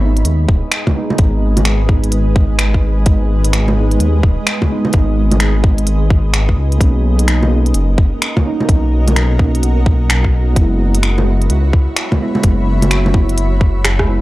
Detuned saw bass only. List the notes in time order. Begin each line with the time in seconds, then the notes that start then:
Already playing: G#1
0.25 D#2
0.49 D#1
1.19 G#1
2.12 G#1
3.06 G#1
4.00 D#2
4.23 D#1
4.94 G#1
5.86 G#1
6.57 C#2
6.81 B1
7.74 F#1
7.98 F#1
8.69 B1
9.63 B1
10.56 F#1
11.50 C#2
11.74 C#2
12.44 F#1
13.37 F#1